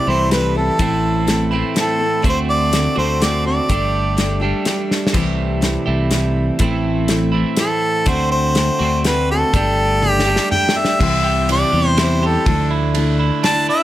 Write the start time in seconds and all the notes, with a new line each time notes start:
Already playing: E3 D5
0.07 C2 C3 E3 G3 A3 C4 E4 G4 A4 C5
0.30 G3 C4 E4 A4 B4, snare, closed hi-hat
0.55 G3 C4 E4 A4
0.79 A1 A2 E3 A3 C4 E4 A4, kick, closed hi-hat
1.27 A3 C4 E4 A4, snare, closed hi-hat
1.51 A2 E3 A3 C4 E4 A4
1.74 A3 C4 E4 A4, snare, closed hi-hat
1.80 A4
1.99 A3 C4 E4 A4
2.22 D2 D3 A3 C4 F#4 A4, kick, closed hi-hat
2.29 C5
2.50 D5
2.71 A3 C4 F#4 A4, snare, closed hi-hat
2.95 D2 A3 C4 F#4 A4 C5
3.00 D3
3.20 A3 C4 F#4 A4 D5, snare, closed hi-hat
3.45 C4 F#4 A4 D5
3.68 G1 G3 A3 D4 G4 A4, kick, closed hi-hat
4.17 G3 D4 G4 A4, snare, closed hi-hat
4.40 D4 G4 A4
4.44 G3 A3
4.65 G3 D4 G4 A4, snare, closed hi-hat
4.91 snare
5.07 snare
5.14 C2 C3 E3 G3 A3 C4 E4 G4 A4, kick, closed hi-hat, splash
5.61 G3 C4 E4 A4, snare, closed hi-hat
5.86 C2 C3 E3 A3 E4 G4
6.11 G3 C4 E4 A4, snare, closed hi-hat
6.59 A1 A2 E3 A3 C4 E4 A4, kick, closed hi-hat
7.08 A3 C4 E4 A4, snare, closed hi-hat
7.32 A2 E3 A3 C4 E4
7.57 A3 C4 E4 A4, snare, closed hi-hat
8.06 D2 D3 A3 C4 F#4 A4 C5, kick, closed hi-hat
8.31 C5
8.55 A3 C4 F#4 A4, snare, closed hi-hat
8.79 D2 D3 A3 C4 F#4
9.05 A3 C4 F#4 A4 B4, snare, closed hi-hat
9.30 C4 F#4 A4
9.54 G1 G3 A3 D4 G4 A4, kick, closed hi-hat
10.02 G3 D4 G4 A4, high tom
10.10 G4
10.20 snare
10.27 G3 A3 D4 G4 A4
10.36 snare
10.51 G3 D4 G4 A4 G5, mid tom
10.69 snare
10.76 D4 G4 A4 E5
10.85 snare
11.00 C2 C3 E3 G3 C4 E4 C5, kick, crash
11.24 G4
11.48 G3 C4 E4 C5 D5, ride
11.72 E2 G4
11.88 C5
11.97 G3 C4 E4 C5, snare, ride
12.02 C5
12.23 G4 A4
12.46 D2 D3 F3 A3 D4 E4 A4, kick, ride
12.71 E4
12.95 A3 D4 E4 A4, ride
13.19 E4
13.43 A3 D4 E4 A4 A5, snare, ride
13.69 E4 E5